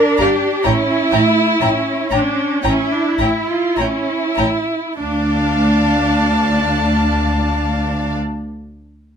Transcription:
0.00 0.65 D4 medium
0.00 0.16 A#4 medium
0.17 0.27 G1 soft
0.17 0.64 G4 medium
0.17 0.27 D5 soft
0.17 0.27 F5 soft
0.17 0.25 A#5 soft
0.64 0.73 A1 medium
0.64 1.13 C#4 medium
0.64 2.12 E4 medium
0.64 0.72 C#5 medium
0.64 0.72 G5 soft
0.64 0.73 A#5 soft
1.11 1.21 A1 soft
1.11 1.62 A3 medium
1.11 1.19 C#5 soft
1.11 1.20 G5 soft
1.11 1.21 A#5 soft
1.61 1.70 A1 medium
1.61 2.62 C#4 medium
1.61 1.69 C#5 soft
1.61 1.69 G5 soft
1.61 1.69 A#5 soft
2.11 2.19 A1 soft
2.11 2.63 D4 medium
2.11 2.19 C#5 soft
2.11 2.19 G5 soft
2.11 2.19 A#5 soft
2.62 2.72 A1 medium
2.62 2.90 C#4 medium
2.62 3.77 E4 medium
2.62 2.71 C#5 soft
2.62 2.70 G5 soft
2.62 2.71 A#5 soft
2.91 3.19 D4 medium
3.18 3.27 A1 soft
3.18 3.47 E4 medium
3.18 3.28 C#5 soft
3.18 3.28 G5 soft
3.18 3.26 A#5 soft
3.48 3.77 F4 medium
3.77 3.86 A1 soft
3.77 4.39 C#4 soft
3.77 4.99 E4 medium
3.77 3.86 C#5 soft
3.77 3.85 G5 soft
3.77 3.85 A#5 soft
4.37 4.46 A1 soft
4.37 4.46 C#5 soft
4.37 4.46 G5 soft
4.37 4.45 A#5 soft
4.97 8.15 D2 soft
4.97 8.14 D4 medium
4.97 8.16 D5 soft
4.97 8.15 F5 soft
4.97 8.13 A5 soft

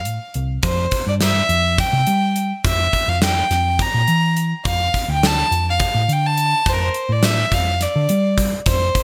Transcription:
0.00 0.36 F5 medium
0.05 0.18 A2 medium
0.05 closed hi-hat medium
0.34 0.57 C2 medium
0.34 closed hi-hat soft
0.63 0.86 F2 medium
0.63 1.04 C5 medium
0.63 kick loud
0.63 closed hi-hat medium
0.91 kick medium
0.91 closed hi-hat medium
1.07 1.40 G2 medium
1.07 1.15 D5 medium
1.21 1.82 E5 medium
1.21 snare medium
1.21 closed hi-hat medium
1.49 1.83 F2 medium
1.49 closed hi-hat medium
1.78 2.44 G5 medium
1.78 kick loud
1.78 closed hi-hat medium
1.93 2.04 C3 medium
2.07 2.52 G3 medium
2.07 closed hi-hat medium
2.36 closed hi-hat medium
2.65 2.87 F2 medium
2.65 3.10 E5 medium
2.65 kick medium
2.65 closed hi-hat medium
2.93 kick medium
2.93 closed hi-hat medium
3.08 3.41 F2 medium
3.08 3.22 F5 medium
3.22 3.83 G5 medium
3.22 snare loud
3.22 closed hi-hat medium
3.51 3.84 F2 medium
3.51 snare soft
3.51 closed hi-hat medium
3.79 4.45 A#5 medium
3.79 kick medium
3.79 closed hi-hat medium
3.94 4.05 A#2 medium
4.08 4.52 E3 medium
4.08 closed hi-hat medium
4.37 closed hi-hat medium
4.65 4.87 F2 medium
4.65 5.05 F5 medium
4.65 kick loud
4.65 closed hi-hat medium
4.94 kick medium
4.94 closed hi-hat medium
5.08 5.42 D2 medium
5.08 5.28 G5 medium
5.23 5.67 A5 medium
5.23 snare loud
5.23 closed hi-hat medium
5.51 5.85 F2 medium
5.51 closed hi-hat medium
5.70 6.14 F5 medium
5.80 kick loud
5.80 closed hi-hat medium
5.95 6.05 A2 medium
6.08 6.53 D3 medium
6.08 closed hi-hat medium
6.13 6.28 G5 medium
6.27 6.71 A5 medium
6.37 closed hi-hat medium
6.66 6.88 F2 medium
6.66 6.74 C5 medium
6.66 kick loud
6.66 closed hi-hat medium
6.72 6.85 A#4 medium
6.83 7.14 C5 medium
6.94 closed hi-hat medium
7.09 7.42 A2 medium
7.09 7.26 D5 medium
7.23 7.55 E5 medium
7.23 snare loud
7.23 closed hi-hat medium
7.52 7.85 F2 medium
7.52 7.84 F5 medium
7.52 kick medium
7.52 closed hi-hat medium
7.81 8.46 D5 medium
7.81 snare soft
7.81 closed hi-hat medium
7.96 8.06 D3 medium
8.09 8.54 G3 medium
8.09 closed hi-hat medium
8.38 kick medium
8.38 closed hi-hat medium
8.66 8.88 F2 medium
8.66 9.03 C5 medium
8.66 kick medium
8.66 closed hi-hat medium
8.95 kick medium
8.95 closed hi-hat medium

